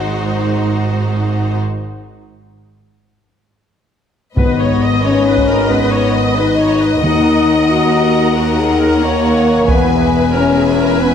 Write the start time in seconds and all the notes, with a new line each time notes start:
Already playing: G#1 G#2 D#4 F#4 C5
4.37 G#1 G#2 B3 B4 D#5, taiko
4.60 C#5
4.82 D#5
5.04 C#4 C#5
5.27 B4
5.38 taiko
5.48 A#4
5.71 B3 B4
5.93 C#5
6.14 D#5
6.36 D#4 B4
6.59 C#5
6.81 B4
7.02 D#2 D#3 D#4 A#4 D#5 F#5
7.71 F#4
8.36 D#4 F#4
8.58 G#4
8.81 A#4
9.03 A#3 C#5
9.68 E1 E2 B3 B4 E5 G#5, taiko
10.35 C#4 A#4
10.56 G#4
10.79 A#4
11.00 B3 B4